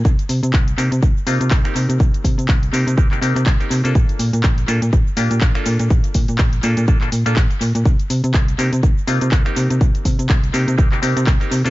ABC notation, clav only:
X:1
M:4/4
L:1/16
Q:"Swing 16ths" 1/4=123
K:Cdor
V:1 name="Clav"
z6 [B,CEG] z3 [B,CEF]2 [B,CEA] [B,CEG]3- | [B,CEG]6 [B,CEG]2 [B,CEG] [B,CEG] [B,CEG]3 [B,CEG]2 [B,DFA]- | [B,DFA]6 [B,DFA] z3 [B,DFG]2 [B,DFB] [B,DFA]3- | [B,DFA]6 [B,DFA]2 [B,DFA] [B,DFA] z [B,DFA] z4 |
z6 [B,CEG] z3 [B,CEF]2 [B,CEA] [B,CEG]3- | [B,CEG]6 [B,CEG]2 [B,CEG] [B,CEG] [B,CEG]3 [B,CEG]2 [B,DFA] |]